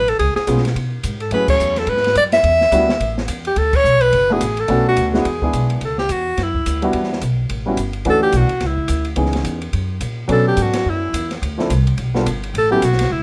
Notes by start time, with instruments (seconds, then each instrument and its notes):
Already playing: upright bass A1, alto saxophone B4
0.08 alto saxophone A4, ride
0.19 upright bass C#2, alto saxophone G#4, kick, ride
0.36 alto saxophone G#4, snare
0.47 upright bass B1, grand piano G#3 B3 C#4 F4 G#4, kick, hi-hat pedal, ride
0.58 snare
0.65 snare, ride
0.75 upright bass B2, kick, ride
1.03 upright bass G#2, kick, hi-hat pedal, ride
1.20 alto saxophone A4, ride
1.31 upright bass F#2, grand piano F#3 A3 C#4 E4 G#4, alto saxophone B4, kick, ride
1.48 alto saxophone C#5, kick, crash
1.59 upright bass E2, hi-hat pedal
1.76 alto saxophone A4, snare, ride
1.87 upright bass G#2, alto saxophone B4, kick, ride
1.97 snare
2.04 snare, ride
2.15 upright bass F#2, alto saxophone D5, kick, hi-hat pedal, ride
2.32 alto saxophone E5, snare, ride
2.43 upright bass E2, kick, ride
2.61 snare
2.71 upright bass D2, grand piano G3 B3 D4 E4 F#4, kick, hi-hat pedal, ride
2.89 snare
3.00 upright bass A1, kick, ride
3.18 snare
3.28 upright bass E2, kick, hi-hat pedal, ride
3.45 alto saxophone G4, ride
3.56 upright bass D2, alto saxophone A4, kick, ride
3.73 alto saxophone C#5, kick, crash
3.84 upright bass B1, hi-hat pedal
4.01 alto saxophone B4, ride
4.12 upright bass F#1, kick, ride
4.30 grand piano A3 B3 D4 E4 F#4, alto saxophone G#4
4.41 upright bass A1, kick, hi-hat pedal, ride
4.57 alto saxophone A4, ride
4.68 upright bass B1, grand piano A3 B3 C#4 D4 F#4, kick, ride
4.89 alto saxophone F#4
4.97 upright bass D2, kick, hi-hat pedal, ride
5.08 alto saxophone F#4
5.13 grand piano G#3 B3 D4 E4 F#4, snare
5.19 alto saxophone G#4
5.25 upright bass E2, kick, ride
5.42 grand piano G#3 B3 D4 E4 G#4, kick
5.53 upright bass B1, kick, hi-hat pedal, ride
5.70 ride
5.81 upright bass C#2, kick, ride
5.85 alto saxophone A4
5.98 alto saxophone G4, snare
6.09 upright bass E2, alto saxophone F#4, kick, hi-hat pedal, ride
6.37 upright bass F#2, kick, snare, ride
6.43 alto saxophone E4
6.54 kick
6.66 upright bass D2, hi-hat pedal, ride
6.82 grand piano G3 B3 D4 E4 F#4, ride
6.93 upright bass E2, kick, ride
7.04 snare
7.13 snare
7.21 upright bass B1, kick, hi-hat pedal, ride
7.49 upright bass A1, kick, ride
7.66 grand piano G3 B3 C#4 E4 F#4
7.77 upright bass G1, kick, hi-hat pedal, ride
7.93 ride
8.05 upright bass D2, grand piano E3 A3 C#4 D4 F#4, kick, ride
8.10 alto saxophone A4
8.23 alto saxophone G4
8.32 upright bass B1, kick, hi-hat pedal, ride
8.37 alto saxophone F#4
8.49 ride
8.60 upright bass C#2, kick, snare, ride
8.67 alto saxophone E4
8.77 kick
8.88 upright bass D2, kick, hi-hat pedal, ride
9.05 ride
9.16 upright bass C#2, grand piano E3 B3 C#4 D#4 G#4, kick, ride
9.26 snare
9.33 snare, ride
9.44 upright bass E2, kick, hi-hat pedal, ride
9.62 ride
9.73 upright bass F#2, kick, ride
10.01 upright bass A#2, kick, hi-hat pedal, ride
10.28 upright bass B2, grand piano F#3 B3 C#4 D4 A4, kick, ride
10.32 alto saxophone A4
10.48 alto saxophone G4
10.57 upright bass G#2, kick, hi-hat pedal, ride
10.62 alto saxophone F#4
10.73 snare, ride
10.86 upright bass F#2, kick
10.90 alto saxophone E4
11.13 upright bass E2, kick, hi-hat pedal, ride
11.31 snare, ride
11.42 upright bass D2, kick, ride
11.58 grand piano F3 C4 D4 E4 A4, snare
11.70 upright bass C2, kick, hi-hat pedal, ride
11.87 ride
11.98 upright bass B1, kick, ride
12.14 grand piano G3 B3 D4 F4 A4, snare
12.26 upright bass G1, kick, hi-hat pedal, ride
12.43 ride
12.54 upright bass A1, alto saxophone A4, kick, ride
12.71 grand piano F#3 B3 C#4 E4 A4, alto saxophone G4
12.82 upright bass B1, alto saxophone F#4, kick, hi-hat pedal, ride
12.93 snare
12.99 snare, ride
13.10 upright bass C#2, alto saxophone E4, kick